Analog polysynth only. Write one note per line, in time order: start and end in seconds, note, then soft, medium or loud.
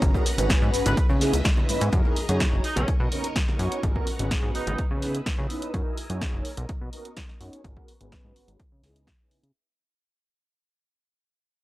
0.02 0.25 B3 loud
0.02 0.25 C#4 medium
0.02 0.25 A#4 loud
0.37 0.96 B3 loud
0.37 0.96 C#4 medium
0.37 0.96 F#4 medium
0.37 0.96 G#4 medium
0.37 0.96 B4 loud
1.20 1.35 B3 medium
1.20 1.36 C#4 medium
1.20 1.36 D#4 medium
1.20 1.36 E4 medium
1.20 1.36 G#4 loud
1.68 1.89 B3 loud
1.68 1.89 C#4 medium
1.68 1.89 D#4 medium
1.68 1.89 E4 medium
1.68 1.89 B4 loud
1.92 2.15 D#4 loud
1.92 2.15 E4 medium
1.92 2.16 F#4 medium
1.92 2.16 G#4 medium
1.92 2.16 A#4 loud
2.28 2.63 D#4 loud
2.28 2.63 E4 medium
2.28 2.63 F#4 medium
2.28 2.63 G#4 medium
2.28 2.63 C#5 loud
3.12 3.26 B3 medium
3.12 3.26 C#4 medium
3.12 3.27 D#4 medium
3.12 3.27 F#4 medium
3.12 3.27 A#4 loud
3.59 3.80 B3 medium
3.59 3.80 C#4 medium
3.59 3.80 D#4 medium
3.59 3.80 F#4 medium
3.59 3.80 C#5 loud
3.83 4.06 B3 loud
3.83 4.06 C#4 medium
3.83 4.06 F#4 medium
3.83 4.06 G#4 medium
3.83 4.06 A#4 loud
4.18 4.77 B3 medium
4.18 4.77 C#4 medium
4.18 4.77 F#4 medium
4.18 4.77 G#4 medium
4.18 4.77 B4 loud
5.02 5.17 B3 medium
5.02 5.17 C#4 medium
5.02 5.17 D#4 medium
5.02 5.17 E4 medium
5.02 5.17 G#4 loud
5.50 5.70 B3 medium
5.50 5.70 C#4 medium
5.50 5.70 D#4 medium
5.50 5.71 E4 medium
5.50 5.71 B4 loud
5.74 5.97 E4 medium
5.74 5.97 F#4 medium
5.74 5.97 G#4 medium
5.74 5.97 A#4 loud
6.09 6.44 D#4 loud
6.09 6.44 E4 medium
6.09 6.44 F#4 medium
6.09 6.44 G#4 medium
6.09 6.44 C#5 loud
6.92 7.07 B3 medium
6.92 7.07 C#4 medium
6.92 7.07 D#4 medium
6.92 7.07 F#4 medium
6.92 7.08 A#4 loud
7.41 7.61 B3 medium
7.41 7.61 C#4 medium
7.41 7.61 D#4 medium
7.41 7.61 F#4 medium
7.41 7.61 C#5 loud
7.64 7.87 B3 loud
7.64 7.87 C#4 medium
7.64 7.87 F#4 medium
7.64 7.87 G#4 medium
7.64 7.87 A#4 loud
8.00 8.58 B3 medium
8.00 8.58 C#4 medium
8.00 8.58 F#4 medium
8.00 8.59 G#4 medium
8.00 8.59 B4 loud
8.84 9.06 B3 medium
8.84 9.06 C#4 medium
8.84 9.06 D#4 medium
8.84 9.06 E4 medium
8.84 9.07 G#4 loud
9.20 9.42 B3 medium
9.20 9.43 C#4 medium
9.20 9.43 D#4 medium
9.20 9.43 E4 medium
9.20 9.43 G#4 medium